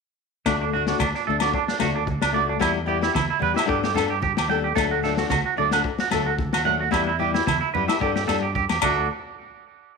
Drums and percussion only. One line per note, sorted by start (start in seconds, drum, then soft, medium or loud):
0.46 kick medium
0.46 snare medium
0.46 muted conga soft
0.46 low agogo medium
0.87 snare medium
0.99 kick medium
0.99 snare medium
0.99 muted conga soft
0.99 high conga medium
0.99 low agogo medium
1.15 snare soft
1.40 snare medium
1.40 low agogo medium
1.54 kick medium
1.54 muted conga soft
1.68 snare medium
1.80 snare medium
1.80 muted conga soft
1.80 high conga medium
1.80 low agogo medium
2.07 kick medium
2.07 high conga medium
2.22 snare medium
2.22 low agogo medium
2.61 kick medium
2.61 snare medium
2.61 muted conga soft
2.61 low agogo medium
3.03 snare medium
3.15 kick medium
3.15 snare medium
3.15 muted conga soft
3.15 high conga medium
3.15 low agogo medium
3.42 high conga medium
3.56 snare medium
3.56 low agogo medium
3.69 kick medium
3.69 muted conga soft
3.84 snare medium
3.95 snare medium
3.95 muted conga soft
3.95 low conga medium
3.95 low agogo medium
4.22 kick medium
4.22 high conga medium
4.37 snare medium
4.37 low agogo medium
4.76 kick medium
4.76 snare medium
4.76 muted conga soft
4.76 low agogo medium
5.04 snare soft
5.17 snare medium
5.30 kick medium
5.30 snare medium
5.30 muted conga soft
5.30 high conga medium
5.30 low agogo medium
5.71 snare medium
5.71 low agogo medium
5.84 kick medium
5.84 muted conga soft
5.99 snare medium
6.11 snare medium
6.11 muted conga soft
6.11 high conga medium
6.11 low agogo medium
6.39 kick medium
6.39 high conga medium
6.53 snare medium
6.53 low agogo medium
6.92 kick medium
6.92 snare medium
6.92 low agogo medium
7.35 snare medium
7.47 kick medium
7.47 snare medium
7.47 muted conga soft
7.47 high conga medium
7.47 low agogo medium
7.75 high conga medium
7.89 snare medium
7.89 low agogo medium
8.01 kick medium
8.01 muted conga soft
8.16 snare medium
8.28 snare medium
8.28 muted conga soft
8.28 low conga medium
8.28 low agogo medium
8.55 kick medium
8.55 high conga medium
8.69 snare medium
8.69 low agogo medium
8.82 kick medium
8.82 crash medium
8.82 muted conga medium
8.82 low agogo loud